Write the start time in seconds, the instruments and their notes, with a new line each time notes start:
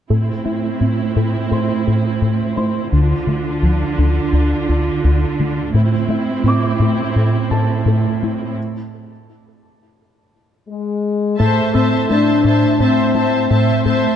0.10 analog synth bass A2, cello section A2, synth arpeggio sound A3, viola section C4 E4
0.45 analog synth bass A3, synth arpeggio sound E4
0.81 analog synth bass A2, synth arpeggio sound C4
1.16 analog synth bass A2, synth arpeggio sound A3
1.51 analog synth bass A2, synth arpeggio sound A4, grand piano C5 C6
1.87 analog synth bass A2, synth arpeggio sound A4
2.22 analog synth bass A2, synth arpeggio sound A3
2.56 analog synth bass A3, synth arpeggio sound E4, grand piano C5 C6
2.92 analog synth bass D2, synth arpeggio sound D3, cello section D3, viola section D4 F4
3.27 analog synth bass D3, synth arpeggio sound A3
3.63 analog synth bass D2, synth arpeggio sound F3
3.98 analog synth bass D2, synth arpeggio sound D3
4.33 analog synth bass D2, synth arpeggio sound D4
4.69 analog synth bass D2, synth arpeggio sound D4
5.04 analog synth bass D2, synth arpeggio sound D3
5.40 analog synth bass D3, synth arpeggio sound A3
5.74 analog synth bass A2, cello section A2, synth arpeggio sound A3, viola section C4 E4
6.09 analog synth bass A3, synth arpeggio sound E4
6.44 analog synth bass A2, synth arpeggio sound C4, grand piano D6
6.80 analog synth bass A2, synth arpeggio sound A3
7.16 analog synth bass A2, synth arpeggio sound A4
7.51 analog synth bass A2, synth arpeggio sound A4, grand piano A5
7.86 analog synth bass A2, synth arpeggio sound A3
8.23 analog synth bass A3, synth arpeggio sound E4
10.69 french horn section G#3
11.38 cello section A2, analog synth bass A2, french horn section A3, synth arpeggio sound A3, viola section C5 E5, violin section A5
11.74 analog synth bass A2, synth arpeggio sound C4, viola section C5 E5, violin section A5, grand piano E6
12.09 cello section A2, analog synth bass A3, french horn section D4, synth arpeggio sound E4, viola section C5 E5, violin section A5
12.44 analog synth bass A2, synth arpeggio sound A3, viola section C5 E5, violin section A5
12.80 analog synth bass A2, cello section A2, synth arpeggio sound C4, french horn section C4, viola section C5 E5, violin section A5
13.15 analog synth bass A3, synth arpeggio sound E4, viola section C5 E5, violin section A5
13.50 analog synth bass A2, cello section A2, synth arpeggio sound A3, viola section C5 E5, violin section A5
13.85 analog synth bass A2, synth arpeggio sound A4, viola section C5 E5, violin section A5